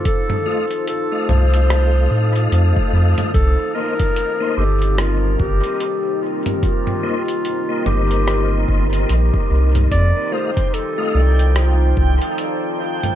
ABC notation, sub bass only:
X:1
M:4/4
L:1/8
Q:"Swing 16ths" 1/4=73
K:Cdor
V:1 name="Sub bass" clef=bass
z3 C,,2 A,, F,, F,, | C,, z2 G,,,2 G,,, z2 | z3 G,,,2 G,,, B,,, C,, | F,, z2 C,,2 C,, z2 |]